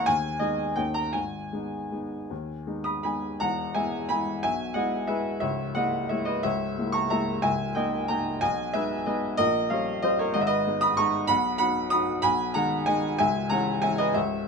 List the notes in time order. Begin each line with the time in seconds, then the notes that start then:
Already playing: C#2 E3 A#3 A#5
0.06 D#2 G#5
0.39 G#3 B3 D#4 D#5
0.76 D#2 A#3 C#4 D#4 G5
0.94 A#5
1.13 G#1 G#5
1.53 G#3 B3 D#4
1.92 G#3 B3 D#4
2.30 D#2
2.67 G#3 B3 D#4
2.84 B5 D#6
3.03 G#3 B3 D#4 G#5 B5
3.40 E1 E2 F#5 A#5
3.75 G#3 B3 E4 E5 G#5
4.09 G#3 B3 E4 G#5 B5
4.43 B1 B2 E5 G#5
4.74 G#3 B3 E4 D#5 F#5
5.07 G#3 B3 E4 B4 E5
5.40 C#1 C#2 C#5 E5
5.75 G#3 A#3 E4 D#5 F#5
6.09 G#3 A#3 E4 C#5 E5
6.25 B4 D#5
6.43 C#1 C#2 C#5 E5
6.78 G#3 A#3 E4
6.92 A#5 C#6
7.10 G#3 A#3 E4 E5 A#5
7.42 C#1 C#2 E5 G#5
7.75 A#3 D#4 D#5 G5
8.08 A#3 D#4 G5 A#5
8.41 B1 B2 D#5 G#5
8.73 G#3 B3 D#4 B4 E5
9.06 G#3 B3 D#4 B4 D#5
9.37 A#1 A#2 A#4 D#5
9.70 G3 C#4 C#5 F5
10.02 G3 C#4 C5 D#5
10.19 A#4 C#5
10.34 G#1 G#2 D#5
10.41 E5
10.47 B4 D#5
10.67 G#3 B3 D#4
10.81 B5 D#6
10.97 G#3 B3 D#4 A#5 C#6
11.27 B1 B2 F#5 B5
11.58 F#3 B3 D#4 F#5 B5
11.90 F#3 B3 D#4 B5 D#6
12.22 B1 B2 G#5 B5
12.54 D#3 G#3 D#4 F#5 A#5
12.86 D#3 G#3 D#4 D#5 G#5
13.19 C#1 C#2 E5 G#5
13.49 E3 G#3 C#4 F#5 A#5
13.82 E3 G#3 C#4 E5 G#5
13.98 B4 D#5
14.14 C#1 C#2 C#5 E5